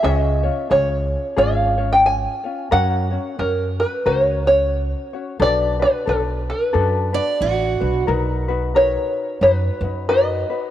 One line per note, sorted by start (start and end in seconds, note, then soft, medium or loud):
0.03 0.47 C#2 medium
0.03 0.44 C#4 medium
0.03 0.43 F4 medium
0.03 0.44 G#4 medium
0.03 0.42 C#5 medium
0.03 0.16 E5 loud
0.16 0.71 D#5 loud
0.43 0.69 C#4 soft
0.43 0.70 F4 soft
0.43 0.70 C#5 medium
0.70 1.14 C#2 medium
0.70 1.37 C#4 medium
0.70 1.36 F4 medium
0.70 1.35 G#4 soft
0.70 1.40 C#5 medium
0.70 1.38 C#5 medium
1.37 2.25 G#1 medium
1.37 1.78 C#4 medium
1.37 1.77 F4 medium
1.37 1.77 G#4 medium
1.37 1.77 C#5 medium
1.37 1.92 F5 medium
1.78 2.46 C#4 soft
1.78 2.44 F4 soft
1.78 2.44 C#5 medium
1.93 2.06 G5 medium
2.06 2.55 G#5 loud
2.44 2.70 C#4 soft
2.44 2.71 F4 soft
2.44 2.71 C#5 medium
2.71 3.15 F#2 loud
2.71 3.12 C#4 medium
2.71 3.11 F#4 medium
2.71 3.12 A#4 medium
2.71 3.10 C#5 medium
2.71 3.35 F#5 loud
3.11 3.37 C#4 soft
3.11 3.38 F#4 medium
3.11 3.38 C#5 soft
3.38 3.82 F#2 medium
3.38 4.04 C#4 soft
3.38 4.06 F#4 soft
3.38 3.79 A#4 medium
3.38 4.06 C#5 medium
3.80 4.04 B4 medium
4.05 4.93 C#2 medium
4.05 4.46 C#4 medium
4.05 4.46 F#4 medium
4.05 4.46 A#4 medium
4.05 4.46 C#5 medium
4.05 4.45 C#5 medium
4.46 5.14 C#4 soft
4.46 5.14 F#4 soft
4.46 5.12 C#5 soft
4.46 5.10 C#5 medium
5.13 5.39 C#4 soft
5.13 5.39 F#4 soft
5.13 5.40 C#5 soft
5.40 5.83 B1 loud
5.40 5.80 D4 medium
5.40 5.80 F#4 medium
5.40 5.80 A4 medium
5.40 5.78 B4 medium
5.40 5.82 D5 loud
5.79 6.06 D4 soft
5.79 6.06 F#4 soft
5.79 6.06 B4 soft
5.79 6.09 B4 medium
6.06 6.51 B1 medium
6.06 6.72 D4 medium
6.06 6.74 F#4 soft
6.06 6.72 A4 medium
6.06 6.20 A4 medium
6.06 6.73 B4 medium
6.50 7.78 B4 medium
6.73 7.18 F#2 medium
6.73 7.14 D4 medium
6.73 7.13 F#4 medium
6.73 7.14 A4 medium
6.73 7.12 B4 medium
7.13 7.81 D4 soft
7.13 7.81 F#4 soft
7.13 7.80 B4 soft
7.13 7.42 D5 medium
7.41 7.77 A1 medium
7.41 8.04 F#4 medium
7.80 8.05 B1 medium
7.80 8.08 D4 soft
7.80 8.07 F#4 soft
7.80 8.07 B4 medium
8.07 8.95 B1 medium
8.07 8.48 D#4 medium
8.07 8.48 F#4 medium
8.07 8.48 A#4 medium
8.07 8.47 B4 medium
8.48 8.74 D#4 medium
8.48 8.75 F#4 medium
8.48 8.75 B4 medium
8.75 9.42 D#4 medium
8.75 9.42 F#4 medium
8.75 9.42 A#4 medium
8.75 9.43 B4 medium
8.75 9.42 C#5 medium
9.41 9.68 F#2 medium
9.41 9.82 D#4 medium
9.41 9.82 F#4 medium
9.41 10.08 B4 medium
9.41 9.81 B4 medium
9.81 10.42 F#2 medium
9.81 10.08 D#4 soft
9.81 10.08 F#4 soft
9.81 10.08 B4 soft
10.09 10.49 D#4 medium
10.09 10.50 F#4 medium
10.09 10.49 A#4 medium
10.09 10.48 B4 medium
10.09 10.59 D#5 medium
10.50 10.71 D#4 soft
10.50 10.71 F#4 soft
10.50 10.71 B4 medium